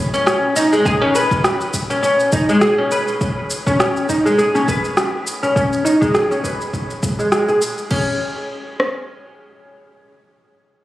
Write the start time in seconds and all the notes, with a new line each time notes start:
0.14 C#4, shaker
0.26 C#4, cross-stick, shaker
0.56 D#4, shaker
0.73 G#3, shaker
0.85 G#4, kick, shaker
1.02 C#4
1.15 B4, shaker
1.31 kick, shaker
1.44 cross-stick, shaker
1.61 shaker
1.74 kick, shaker
1.90 C#4, shaker
2.03 C#4, shaker
2.20 shaker
2.32 D#4, kick, shaker
2.49 G#3, shaker
2.61 G#4, cross-stick, shaker
2.78 C#4
2.91 B4, shaker
3.08 shaker
3.21 kick, shaker
3.50 shaker
3.67 C#4, kick, shaker
3.80 C#4, cross-stick, shaker
3.96 shaker
4.09 D#4, kick, shaker
4.26 G#3, shaker
4.38 G#4, shaker
4.55 C#4, shaker
4.68 B4, kick, shaker
4.84 shaker
4.97 cross-stick, shaker
5.27 shaker
5.43 C#4, shaker
5.56 C#4, kick, shaker
5.73 shaker
5.85 D#4, shaker
6.01 G#3, kick, shaker
6.14 G#4, cross-stick, shaker
6.31 C#4, shaker
6.44 B4, kick, shaker
6.61 shaker
6.73 kick, shaker
6.90 shaker
7.03 kick, shaker
7.19 G#3, shaker
7.32 G#3, cross-stick, shaker
7.49 G#4, shaker
7.62 shaker
7.78 shaker
7.91 C#4, kick, crash
8.80 cross-stick